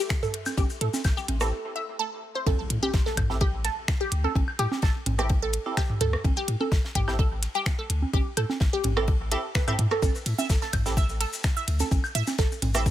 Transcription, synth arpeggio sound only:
0.23 0.26 A4 medium
0.57 0.59 G4 loud
0.81 0.84 A4 medium
1.17 1.19 G4 loud
1.41 1.44 A4 medium
1.76 1.78 E5 loud
1.99 2.02 A4 loud
2.35 2.38 C5 medium
2.47 2.50 A4 medium
2.83 2.85 G4 loud
3.06 3.09 A4 medium
3.41 3.43 G4 loud
3.65 3.68 A4 medium
4.01 4.03 G4 loud
4.24 4.27 A4 medium
4.59 4.61 G4 loud
4.83 4.86 A4 medium
5.19 5.21 G4 loud
5.42 5.45 A4 medium
5.77 5.79 G4 loud
6.01 6.04 A4 medium
6.37 6.39 G4 loud
6.61 6.63 A4 medium
6.95 6.97 G4 loud
7.19 7.22 A4 medium
7.55 7.57 G4 loud
7.79 7.82 A4 medium
8.13 8.15 G4 loud
8.37 8.40 A4 medium
8.73 8.75 G4 loud
8.97 9.00 A4 medium
9.32 9.36 E5 medium
9.55 9.60 B4 medium
9.68 9.71 E5 loud
9.91 9.96 A4 medium
10.02 10.06 A4 medium
10.38 10.43 E5 loud
10.62 10.65 A4 medium
10.97 11.02 E5 loud
11.21 11.24 A4 medium
11.57 11.61 E5 loud
11.80 11.83 A4 medium
12.15 12.20 E5 loud
12.39 12.42 A4 medium
12.75 12.79 E5 loud

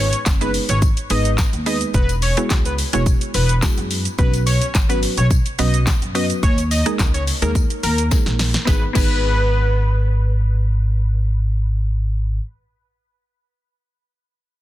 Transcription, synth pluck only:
0.00 0.12 G#3 medium
0.00 0.12 B3 medium
0.00 0.12 D#4 medium
0.00 0.12 G#4 medium
0.00 0.12 B4 medium
0.41 0.81 G#3 medium
0.41 0.81 B3 medium
0.41 0.81 D#4 medium
0.41 0.81 G#4 medium
0.41 0.81 B4 medium
1.10 1.43 G#3 medium
1.10 1.43 B3 medium
1.10 1.43 D#4 medium
1.10 1.44 G#4 medium
1.10 1.44 B4 medium
1.66 1.94 G#3 medium
1.66 1.94 B3 medium
1.66 1.94 D#4 medium
1.66 1.95 G#4 medium
1.66 1.95 B4 medium
2.37 2.70 G#3 medium
2.37 2.70 B3 medium
2.37 2.70 E4 medium
2.37 2.70 F#4 medium
2.37 2.70 G#4 loud
2.93 3.33 G#3 medium
2.93 3.34 B3 medium
2.93 3.34 E4 medium
2.93 3.34 F#4 medium
2.93 3.34 G#4 medium
3.62 3.96 G#3 medium
3.62 3.96 B3 medium
3.62 3.96 E4 medium
3.62 3.96 F#4 medium
3.62 3.96 G#4 medium
4.19 4.60 F#3 medium
4.19 4.60 B3 medium
4.19 4.60 C#4 medium
4.19 4.60 F#4 medium
4.19 4.61 B4 medium
4.89 5.30 F#3 medium
4.89 5.30 B3 medium
4.89 5.30 C#4 medium
4.89 5.30 F#4 medium
4.89 5.30 B4 medium
5.59 5.92 F#3 medium
5.59 5.92 B3 medium
5.59 5.92 C#4 medium
5.59 5.92 F#4 medium
5.59 5.92 B4 medium
6.15 6.43 F#3 medium
6.15 6.43 B3 medium
6.15 6.43 C#4 medium
6.15 6.43 F#4 medium
6.15 6.43 B4 loud
6.86 7.18 G#3 medium
6.86 7.18 A#3 medium
6.86 7.18 D#4 medium
6.86 7.18 G#4 medium
6.86 7.19 A#4 loud
7.42 7.82 G#3 medium
7.42 7.82 A#3 medium
7.42 7.82 D#4 medium
7.42 7.82 G#4 medium
7.42 7.82 A#4 medium
8.11 8.44 G#3 medium
8.11 8.44 A#3 medium
8.11 8.44 D#4 medium
8.11 8.44 G#4 medium
8.11 8.44 A#4 medium
8.65 8.82 B3 medium
8.65 8.83 D#4 medium
8.65 8.84 G#4 medium
8.69 8.85 B4 loud
8.93 12.37 B3 medium
8.93 12.37 D#4 medium
8.93 12.38 G#4 medium
8.97 12.39 B4 loud

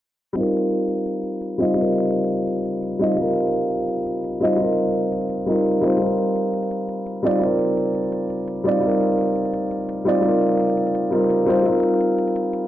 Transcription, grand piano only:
0.33 1.56 G3 medium
0.33 1.57 C4 medium
0.33 1.58 D#4 medium
0.38 1.58 F4 medium
0.38 1.59 A#4 medium
1.58 1.72 G3 medium
1.58 1.74 C4 medium
1.58 1.75 D#4 medium
1.58 1.76 F4 medium
1.58 1.76 D#5 loud
1.74 2.97 G3 medium
1.74 2.98 C4 medium
1.74 2.99 D#4 medium
1.79 2.99 F4 medium
1.79 3.00 A#4 medium
2.99 3.14 G3 medium
2.99 3.15 C4 medium
2.99 3.16 D#4 medium
2.99 3.17 F4 medium
2.99 3.17 D#5 loud
3.15 4.38 G3 medium
3.15 4.39 C4 medium
3.15 4.40 D#4 medium
3.20 4.41 F4 medium
3.20 4.41 A#4 medium
4.40 4.55 G3 medium
4.40 4.56 C4 medium
4.40 4.57 D#4 medium
4.40 4.58 F4 medium
4.40 4.58 D#5 loud
4.56 5.44 G3 medium
4.56 5.45 C4 medium
4.56 5.46 D#4 medium
4.61 5.47 F4 medium
4.61 5.48 A#4 medium
5.46 5.80 G3 medium
5.46 5.81 C4 medium
5.46 5.81 D#4 medium
5.46 5.81 F4 medium
5.46 5.82 A#4 medium
5.81 5.96 G3 medium
5.81 5.98 C4 medium
5.81 5.98 D#4 medium
5.81 5.99 F4 medium
5.81 5.99 C5 medium
5.98 7.21 G3 medium
5.98 7.21 C4 medium
5.98 7.22 D#4 medium
6.02 7.23 F4 medium
6.02 7.24 A#4 medium
7.23 7.38 G3 medium
7.23 7.39 C4 medium
7.23 7.40 D#4 medium
7.23 7.40 F4 medium
7.23 7.41 D5 loud
7.39 8.62 G3 medium
7.39 8.63 C4 medium
7.39 8.63 D#4 medium
7.44 8.64 F4 medium
7.44 8.65 A#4 medium
8.64 8.79 G3 medium
8.64 8.80 C4 medium
8.64 8.81 D#4 medium
8.64 8.81 F4 medium
8.64 8.82 D5 loud
8.80 10.03 G3 medium
8.80 10.04 C4 medium
8.80 10.05 D#4 medium
8.85 10.05 F4 medium
8.85 10.06 A#4 medium
10.05 10.19 G3 medium
10.05 10.21 C4 medium
10.05 10.22 D#4 medium
10.05 10.22 F4 medium
10.05 10.23 D5 loud
10.21 11.09 G3 medium
10.21 11.10 C4 medium
10.21 11.11 D#4 medium
10.26 11.11 F4 medium
10.26 11.12 A#4 medium
11.11 11.44 G3 medium
11.11 11.45 C4 medium
11.11 11.46 D#4 medium
11.11 11.46 F4 medium
11.11 11.46 A#4 medium
11.46 11.61 G3 medium
11.46 11.62 C4 medium
11.46 11.63 D#4 medium
11.46 11.64 F4 medium
11.46 11.64 C5 medium
11.62 12.68 G3 medium
11.62 12.68 C4 medium
11.62 12.68 D#4 medium
11.67 12.68 F4 medium
11.67 12.68 A#4 medium

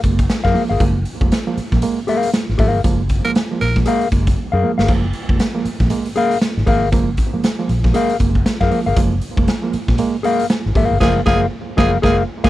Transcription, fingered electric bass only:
0.04 0.26 F#1 loud
0.45 0.54 F#2 medium
0.70 0.79 G1 medium
0.81 1.02 F#1 loud
1.21 1.30 F1 medium
1.57 muted fingered electric bass stroke medium
1.72 1.81 A#1 loud
2.49 2.58 G#1 medium
2.59 2.75 G#1 medium
2.75 2.83 G1 loud
2.85 3.20 F#1 loud
3.62 3.83 A#1 medium
4.12 4.34 F#1 medium
4.53 4.62 F#2 loud
4.79 4.89 G1 medium
4.89 5.11 F#1 loud
5.29 5.38 F1 medium
5.65 muted fingered electric bass stroke soft
5.80 5.89 A#1 loud
6.57 6.66 G#1 medium
6.67 6.83 G#1 medium
6.83 6.93 G1 medium
6.93 7.15 F#1 loud
7.34 muted fingered electric bass stroke soft
7.69 7.91 A#1 medium
8.20 8.42 F#1 loud
8.61 8.70 F#2 loud
8.87 8.95 G1 medium
8.97 9.19 F#1 loud
9.38 9.47 F1 medium
9.74 muted fingered electric bass stroke soft
9.88 9.97 A#1 medium
10.66 10.75 G#1 loud
10.75 10.89 G#1 medium
10.91 11.00 G1 medium
11.01 11.19 F#1 loud
11.27 11.45 F#1 loud
11.78 11.96 F#1 loud
12.04 12.22 F#1 medium
12.44 12.50 F#1 loud

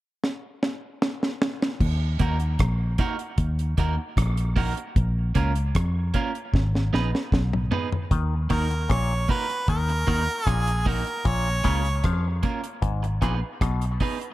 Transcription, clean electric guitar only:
2.19 2.36 A#3 medium
2.19 2.36 D#4 medium
2.19 2.37 F#4 medium
2.19 2.37 A#4 medium
2.99 3.15 A#3 medium
2.99 3.15 D#4 medium
2.99 3.16 F#4 medium
2.99 3.16 A#4 medium
3.78 3.94 A#3 medium
3.78 3.94 D#4 medium
3.78 3.95 F#4 medium
3.78 3.95 A#4 medium
4.56 4.73 A#3 loud
4.56 4.73 D#4 medium
4.56 4.73 F#4 loud
4.56 4.74 A#4 loud
5.35 5.51 A#3 medium
5.35 5.52 C#4 medium
5.35 5.52 F4 medium
5.35 5.52 A#4 loud
6.14 6.30 A#3 medium
6.14 6.31 C#4 medium
6.14 6.31 F4 medium
6.14 6.31 A#4 medium
6.93 7.09 B3 medium
6.93 7.09 D#4 medium
6.93 7.10 G#4 medium
6.93 7.10 B4 loud
7.71 7.88 B3 medium
7.71 7.88 D#4 medium
7.71 7.88 G#4 medium
7.71 7.89 B4 loud
8.50 8.66 A#3 medium
8.50 8.67 D#4 medium
8.50 8.67 F#4 medium
8.50 8.67 A#4 medium
9.29 9.45 A#3 medium
9.29 9.45 D#4 medium
9.29 9.46 F#4 medium
9.29 9.46 A#4 medium
9.49 muted clean electric guitar stroke soft
9.89 muted clean electric guitar stroke soft
10.07 10.24 A#3 medium
10.07 10.24 D#4 medium
10.07 10.24 F#4 medium
10.07 10.25 A#4 medium
10.86 11.02 A#3 medium
10.86 11.03 D#4 loud
10.86 11.03 F#4 medium
10.86 11.03 A#4 medium
11.64 11.81 A#3 medium
11.64 11.81 C#4 medium
11.64 11.81 F4 medium
11.64 11.82 A#4 medium
12.43 12.60 A#3 medium
12.43 12.60 C#4 medium
12.43 12.60 F4 medium
12.43 12.61 A#4 medium
12.64 muted clean electric guitar stroke soft
13.03 muted clean electric guitar stroke soft
13.22 13.38 B3 medium
13.22 13.38 D#4 medium
13.22 13.39 G#4 medium
13.22 13.39 B4 medium
14.01 14.17 B3 medium
14.01 14.17 D#4 medium
14.01 14.18 G#4 medium
14.01 14.18 B4 loud

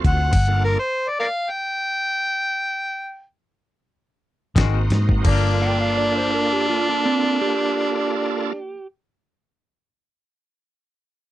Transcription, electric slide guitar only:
5.62 5.80 G5 medium
5.81 5.96 F5 medium
5.98 6.16 D5 medium
6.18 6.32 C5 medium
6.34 6.52 A#4 medium
6.52 6.67 G4 medium
6.70 6.87 F4 medium
6.89 7.03 D4 medium
7.05 7.38 C4 medium
7.41 8.86 G4 medium

